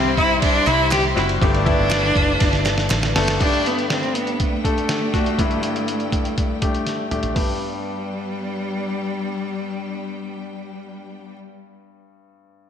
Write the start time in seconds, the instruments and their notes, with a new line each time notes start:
Already playing: fingered electric bass C2, grand piano G2 G3 C4 E4 G4, string section G3 C5 E5 C6, cello C4
0.17 cello E4, kick, ride
0.42 cello D4, kick, ride
0.67 fingered electric bass C2, cello E4, clap, ride
0.91 cello G4, snare, clap, ride
1.15 fingered electric bass F#1, grand piano G3 C4 E4 F#4, cello E4, snare, ride
1.29 ride
1.41 fingered electric bass G1, grand piano G2 D3 A3 B3 D4 G4, cello D4, string section B4 D5 A5, kick, ride
1.55 ride
1.65 grand piano A3 B3 D4 E4, kick, ride
1.79 fingered electric bass G1
1.90 snare, clap, ride
2.16 fingered electric bass F#1, kick, ride
2.40 fingered electric bass G1, kick, snare, ride
2.53 snare
2.65 snare, clap, ride
2.78 snare
2.90 fingered electric bass A1, snare, clap, ride
3.03 snare
3.15 fingered electric bass F#1, grand piano A3 B3 D4 A4, snare, open hi-hat, ride
3.28 snare, ride
3.39 grand piano G2 D3 A3 D4 G4, string section A3 D4 G4 D5 G5, cello D4, kick, closed hi-hat, crash
3.53 closed hi-hat
3.66 cello B3, closed hi-hat
3.79 closed hi-hat
3.90 cello C4, snare, closed hi-hat
4.03 closed hi-hat
4.15 cello B3, closed hi-hat
4.27 closed hi-hat
4.40 cello A3, kick, closed hi-hat
4.64 grand piano A3 D4 A4, kick, closed hi-hat
4.78 closed hi-hat
4.89 snare, closed hi-hat
5.13 grand piano A3 D4 F#4, kick, snare, closed hi-hat
5.26 closed hi-hat
5.39 grand piano G2 D3 G3 D4 E4, kick, closed hi-hat
5.45 grand piano A3
5.51 closed hi-hat
5.63 closed hi-hat
5.76 closed hi-hat
5.88 closed hi-hat
6.00 closed hi-hat
6.12 kick, closed hi-hat
6.25 closed hi-hat
6.38 kick, closed hi-hat
6.62 grand piano A3 D4 G4, kick, closed hi-hat
6.75 closed hi-hat
6.87 snare, closed hi-hat
7.11 grand piano A3 D4 G4, closed hi-hat, mid tom
7.23 closed hi-hat, floor tom
7.34 grand piano G2 B3 D4 G4, cello G3, string section B3 D4 G4 D5 G5, kick, open hi-hat